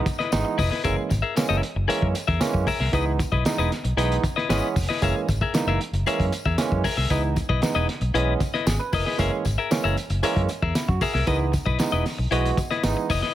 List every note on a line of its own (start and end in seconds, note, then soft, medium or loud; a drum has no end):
0.06 muted clean electric guitar stroke soft
0.06 kick loud
0.06 closed hi-hat medium
0.06 tambourine soft
0.19 0.31 E4 medium
0.19 0.31 B4 medium
0.19 0.32 D#5 medium
0.19 snare soft
0.32 0.42 G#1 loud
0.32 0.57 E3 loud
0.32 0.57 G#3 medium
0.32 0.57 B3 medium
0.32 0.57 D#4 loud
0.32 muted clean electric guitar stroke soft
0.32 snare loud
0.32 closed hi-hat loud
0.32 tambourine loud
0.45 muted clean electric guitar stroke medium
0.58 0.68 F1 loud
0.58 0.71 E4 medium
0.58 0.70 B4 medium
0.58 0.69 D#5 medium
0.58 kick loud
0.58 open hi-hat medium
0.58 tambourine medium
0.71 0.83 E4 medium
0.71 0.84 B4 medium
0.71 0.85 D#5 medium
0.71 snare soft
0.84 0.94 F#1 loud
0.84 1.09 E3 medium
0.84 1.10 G#3 medium
0.84 1.10 A#3 medium
0.84 1.10 C#4 medium
0.84 1.02 G#4 medium
0.84 0.96 A#4 medium
0.84 0.95 E5 medium
0.84 kick loud
0.84 closed hi-hat medium
0.84 tambourine medium
0.96 muted clean electric guitar stroke medium
1.09 1.21 G#1 loud
1.09 muted clean electric guitar stroke soft
1.09 kick medium
1.09 closed hi-hat medium
1.09 tambourine medium
1.22 1.34 G#4 medium
1.22 1.35 A#4 medium
1.22 1.36 E5 medium
1.36 1.62 E3 medium
1.36 1.62 G#3 medium
1.36 1.62 A#3 medium
1.36 1.62 C#4 loud
1.36 muted clean electric guitar stroke medium
1.36 snare loud
1.36 closed hi-hat medium
1.36 tambourine loud
1.49 1.59 F#1 loud
1.49 1.61 G#4 medium
1.49 1.62 A#4 medium
1.49 1.62 E5 loud
1.62 muted clean electric guitar stroke soft
1.62 closed hi-hat medium
1.76 1.85 F#1 loud
1.76 muted clean electric guitar stroke soft
1.88 2.14 E3 medium
1.88 2.14 G#3 medium
1.88 2.14 A#3 medium
1.88 2.14 C#4 loud
1.88 2.06 G#4 loud
1.88 2.07 A#4 loud
1.88 2.07 E5 loud
1.88 muted fingered electric bass stroke soft
1.88 closed hi-hat loud
2.02 2.12 F#2 loud
2.02 kick medium
2.15 muted clean electric guitar stroke soft
2.15 closed hi-hat medium
2.15 tambourine soft
2.27 2.38 E2 medium
2.27 2.40 G#4 medium
2.27 2.41 A#4 medium
2.27 2.41 E5 medium
2.27 kick loud
2.27 snare soft
2.40 2.66 E3 loud
2.40 2.66 G#3 medium
2.40 2.66 A#3 medium
2.40 2.66 C#4 loud
2.40 muted clean electric guitar stroke soft
2.40 snare loud
2.40 closed hi-hat loud
2.40 tambourine medium
2.54 2.64 F#2 loud
2.54 muted clean electric guitar stroke soft
2.54 kick medium
2.67 2.80 G#4 medium
2.67 2.79 A#4 medium
2.67 2.79 E5 medium
2.67 kick loud
2.67 open hi-hat medium
2.67 tambourine medium
2.80 2.90 C2 medium
2.80 2.93 G#4 medium
2.80 2.94 A#4 medium
2.80 2.94 E5 medium
2.80 snare soft
2.92 3.22 C#2 loud
2.92 3.18 E3 medium
2.92 3.18 G#3 medium
2.92 3.18 B3 medium
2.92 3.18 D#4 loud
2.92 3.11 E4 medium
2.92 3.05 B4 loud
2.92 3.05 D#5 loud
2.92 kick loud
2.92 closed hi-hat medium
2.92 tambourine medium
3.06 muted clean electric guitar stroke soft
3.19 muted clean electric guitar stroke soft
3.19 kick loud
3.19 closed hi-hat medium
3.19 tambourine medium
3.32 3.42 B1 medium
3.32 3.44 E4 medium
3.32 3.44 B4 medium
3.32 3.45 D#5 medium
3.32 kick loud
3.45 3.70 E3 medium
3.45 3.70 G#3 medium
3.45 3.71 B3 medium
3.45 3.71 D#4 loud
3.45 muted clean electric guitar stroke soft
3.45 snare loud
3.45 closed hi-hat medium
3.45 tambourine loud
3.58 3.68 E1 medium
3.58 3.71 E4 medium
3.58 3.71 B4 medium
3.58 3.71 D#5 medium
3.72 snare soft
3.72 closed hi-hat medium
3.72 tambourine soft
3.84 3.94 B1 loud
3.84 muted clean electric guitar stroke soft
3.84 closed hi-hat medium
3.97 4.17 B1 loud
3.97 4.22 E3 loud
3.97 4.22 G#3 medium
3.97 4.23 B3 medium
3.97 4.23 D#4 loud
3.97 4.16 E4 loud
3.97 4.16 B4 medium
3.97 4.16 D#5 loud
3.97 closed hi-hat loud
3.97 tambourine soft
4.12 closed hi-hat medium
4.24 muted clean electric guitar stroke soft
4.24 kick loud
4.24 closed hi-hat medium
4.24 tambourine soft
4.36 4.48 E4 medium
4.36 4.49 B4 medium
4.36 4.49 D#5 medium
4.36 snare soft
4.49 4.59 G#1 loud
4.49 4.75 E3 loud
4.49 4.75 G#3 medium
4.49 4.75 B3 loud
4.49 4.75 C#4 loud
4.49 4.68 E4 medium
4.49 4.68 B4 medium
4.49 4.68 D#5 medium
4.49 snare loud
4.49 closed hi-hat loud
4.49 tambourine loud
4.76 4.86 F1 loud
4.76 muted clean electric guitar stroke soft
4.76 kick loud
4.76 open hi-hat medium
4.76 tambourine medium
4.89 5.02 E4 medium
4.89 5.03 B4 medium
4.89 5.03 D#5 medium
4.89 snare soft
5.01 5.12 F#1 loud
5.01 5.27 E3 medium
5.01 5.27 G#3 medium
5.01 5.27 A#3 medium
5.01 5.27 C#4 medium
5.01 5.20 G#4 medium
5.01 5.16 A#4 medium
5.01 5.15 E5 medium
5.01 kick loud
5.01 closed hi-hat loud
5.01 tambourine medium
5.16 muted clean electric guitar stroke soft
5.28 5.38 G#1 medium
5.28 muted clean electric guitar stroke soft
5.28 kick loud
5.28 closed hi-hat medium
5.28 tambourine medium
5.41 5.53 G#4 medium
5.41 5.54 A#4 medium
5.41 5.54 E5 medium
5.41 kick medium
5.54 5.79 E3 medium
5.54 5.79 G#3 medium
5.54 5.79 A#3 medium
5.54 5.80 D#4 loud
5.54 muted clean electric guitar stroke soft
5.54 snare loud
5.54 closed hi-hat medium
5.54 tambourine loud
5.67 5.77 F#1 loud
5.67 5.79 G#4 medium
5.67 5.80 A#4 medium
5.67 5.81 E5 medium
5.81 muted clean electric guitar stroke soft
5.81 closed hi-hat medium
5.93 6.03 F#1 loud
5.93 muted clean electric guitar stroke soft
5.93 closed hi-hat medium
6.06 6.31 E3 medium
6.06 6.32 G#3 medium
6.06 6.32 A#3 medium
6.06 6.32 C#4 loud
6.06 6.25 G#4 medium
6.06 6.25 A#4 loud
6.06 6.25 E5 loud
6.06 muted fingered electric bass stroke soft
6.06 closed hi-hat medium
6.06 tambourine soft
6.20 6.29 F#2 loud
6.20 kick medium
6.20 closed hi-hat medium
6.32 muted clean electric guitar stroke soft
6.32 closed hi-hat medium
6.32 tambourine medium
6.46 6.55 E2 medium
6.46 6.57 G#4 medium
6.46 6.57 A#4 medium
6.46 6.58 E5 medium
6.46 kick loud
6.58 6.83 E3 loud
6.58 6.84 G#3 medium
6.58 6.84 A#3 medium
6.58 6.84 C#4 loud
6.58 snare loud
6.58 closed hi-hat loud
6.58 tambourine loud
6.72 6.81 F#2 loud
6.72 muted clean electric guitar stroke soft
6.72 kick medium
6.84 6.97 G#4 medium
6.84 6.97 A#4 medium
6.84 6.96 E5 medium
6.84 kick loud
6.84 open hi-hat loud
6.84 tambourine medium
6.97 7.07 C2 medium
6.97 7.10 G#4 medium
6.97 7.10 A#4 medium
6.97 7.11 E5 medium
6.97 snare soft
7.10 7.40 C#2 loud
7.10 7.35 E3 medium
7.10 7.35 G#3 medium
7.10 7.36 B3 medium
7.10 7.36 D#4 medium
7.10 7.28 E4 medium
7.10 7.23 B4 loud
7.10 7.22 D#5 medium
7.10 kick loud
7.10 closed hi-hat medium
7.10 tambourine medium
7.23 muted clean electric guitar stroke soft
7.36 muted clean electric guitar stroke soft
7.36 kick loud
7.36 closed hi-hat medium
7.36 tambourine medium
7.49 7.59 B1 medium
7.49 7.61 E4 medium
7.49 7.61 B4 medium
7.49 7.62 D#5 medium
7.49 kick loud
7.62 7.87 E3 medium
7.62 7.88 G#3 medium
7.62 7.88 B3 medium
7.62 7.88 D#4 medium
7.62 muted clean electric guitar stroke medium
7.62 snare loud
7.62 closed hi-hat medium
7.62 tambourine loud
7.75 7.85 E1 medium
7.75 7.87 E4 medium
7.75 7.88 B4 medium
7.75 7.88 D#5 medium
7.89 muted clean electric guitar stroke soft
7.89 snare soft
7.89 closed hi-hat medium
8.01 8.11 B1 medium
8.01 muted clean electric guitar stroke soft
8.01 closed hi-hat soft
8.14 8.34 B1 medium
8.14 8.39 E3 medium
8.14 8.39 G#3 medium
8.14 8.40 B3 medium
8.14 8.40 C#4 loud
8.14 8.32 E4 loud
8.14 8.33 B4 loud
8.14 8.33 D#5 loud
8.14 closed hi-hat medium
8.40 muted clean electric guitar stroke soft
8.40 kick loud
8.40 closed hi-hat medium
8.40 tambourine soft
8.54 8.66 E4 medium
8.54 8.66 B4 medium
8.54 8.67 D#5 medium
8.54 snare soft
8.66 8.76 G#1 loud
8.66 8.79 G#4 medium
8.66 muted clean electric guitar stroke soft
8.66 snare loud
8.66 closed hi-hat loud
8.66 tambourine loud
8.79 8.92 B4 medium
8.79 muted clean electric guitar stroke soft
8.92 9.03 F1 loud
8.92 9.06 E4 medium
8.92 9.05 A#4 medium
8.92 9.06 B4 medium
8.92 9.05 D#5 medium
8.92 kick loud
8.92 open hi-hat medium
8.92 tambourine medium
9.05 9.19 E4 medium
9.05 9.30 G#4 medium
9.05 9.19 B4 medium
9.05 9.20 D#5 medium
9.05 snare soft
9.18 9.29 F#1 loud
9.18 9.43 E3 medium
9.18 9.44 G#3 medium
9.18 9.44 A#3 medium
9.18 9.44 C#4 loud
9.18 9.37 G#4 medium
9.18 9.32 A#4 medium
9.18 9.31 E5 medium
9.18 kick loud
9.18 closed hi-hat medium
9.18 tambourine medium
9.32 muted clean electric guitar stroke soft
9.45 9.55 G#1 loud
9.45 muted clean electric guitar stroke soft
9.45 kick loud
9.45 closed hi-hat medium
9.45 tambourine medium
9.58 9.70 G#4 medium
9.58 9.71 A#4 medium
9.58 9.71 E5 medium
9.70 9.96 E3 medium
9.70 9.96 G#3 medium
9.70 9.96 A#3 medium
9.70 9.96 C#4 loud
9.70 snare loud
9.70 closed hi-hat medium
9.70 tambourine loud
9.84 9.94 F#1 medium
9.84 9.96 G#4 medium
9.84 9.97 A#4 medium
9.84 9.97 E5 medium
9.97 muted clean electric guitar stroke soft
9.97 closed hi-hat medium
9.97 tambourine soft
10.10 10.20 F#1 loud
10.10 muted clean electric guitar stroke soft
10.10 closed hi-hat medium
10.23 10.48 E3 loud
10.23 10.48 G#3 loud
10.23 10.48 A#3 loud
10.23 10.48 C#4 loud
10.23 10.41 G#4 medium
10.23 10.42 A#4 loud
10.23 10.42 E5 medium
10.23 muted fingered electric bass stroke medium
10.23 closed hi-hat loud
10.23 tambourine soft
10.36 10.46 F#2 loud
10.36 kick medium
10.36 closed hi-hat medium
10.49 muted clean electric guitar stroke soft
10.49 closed hi-hat medium
10.49 tambourine soft
10.62 10.72 E2 medium
10.62 10.74 G#4 medium
10.62 10.75 A#4 medium
10.62 10.75 E5 medium
10.62 kick loud
10.75 10.88 E4 medium
10.75 muted clean electric guitar stroke soft
10.75 snare loud
10.75 closed hi-hat loud
10.75 tambourine medium
10.88 10.98 F#2 loud
10.88 11.01 F#4 medium
10.88 muted clean electric guitar stroke medium
10.88 kick medium
11.01 11.14 G#4 medium
11.01 11.13 A#4 medium
11.01 11.12 E5 medium
11.01 kick loud
11.01 open hi-hat medium
11.01 tambourine medium
11.14 11.24 C2 loud
11.14 11.26 G#4 medium
11.14 11.39 A#4 medium
11.14 11.27 A#4 medium
11.14 11.27 E5 medium
11.14 snare soft
11.27 11.57 C#2 loud
11.27 11.52 E3 medium
11.27 11.52 G#3 medium
11.27 11.52 B3 medium
11.27 11.52 D#4 medium
11.27 11.45 E4 medium
11.27 11.39 B4 medium
11.27 11.38 D#5 medium
11.27 kick loud
11.27 closed hi-hat medium
11.27 tambourine medium
11.40 muted clean electric guitar stroke medium
11.52 muted clean electric guitar stroke soft
11.52 kick loud
11.52 closed hi-hat medium
11.52 tambourine medium
11.66 11.76 B1 medium
11.66 11.78 E4 medium
11.66 11.79 B4 medium
11.66 11.79 D#5 medium
11.66 kick medium
11.79 12.04 E3 medium
11.79 12.04 G#3 medium
11.79 12.05 B3 medium
11.79 12.05 D#4 medium
11.79 muted clean electric guitar stroke soft
11.79 snare loud
11.79 closed hi-hat medium
11.79 tambourine loud
11.92 12.02 E1 loud
11.92 12.04 E4 medium
11.92 12.05 B4 medium
11.92 12.05 D#5 medium
12.06 snare soft
12.06 open hi-hat medium
12.06 tambourine soft
12.18 12.28 B1 medium
12.18 muted clean electric guitar stroke medium
12.31 12.51 B1 medium
12.31 12.57 E3 loud
12.31 12.57 G#3 medium
12.31 12.57 B3 medium
12.31 12.49 E4 medium
12.31 12.57 F#4 loud
12.31 12.50 B4 loud
12.31 12.50 D#5 loud
12.31 closed hi-hat medium
12.45 closed hi-hat medium
12.57 muted clean electric guitar stroke soft
12.57 kick loud
12.57 closed hi-hat medium
12.57 tambourine medium
12.71 12.83 E4 medium
12.71 12.83 B4 medium
12.71 12.83 D#5 medium
12.71 snare soft
12.83 12.94 G#1 medium
12.83 13.09 E3 medium
12.83 13.09 G#3 medium
12.83 13.09 B3 medium
12.83 13.09 D#4 loud
12.83 muted clean electric guitar stroke soft
12.83 snare loud
12.83 closed hi-hat loud
12.83 tambourine medium
12.97 muted clean electric guitar stroke soft
13.10 13.20 F1 medium
13.10 13.23 E4 medium
13.10 13.22 B4 medium
13.10 13.21 D#5 medium
13.10 kick loud
13.10 open hi-hat medium
13.10 tambourine medium
13.22 13.34 E4 medium
13.22 13.34 B4 medium
13.22 13.34 D#5 medium
13.22 snare soft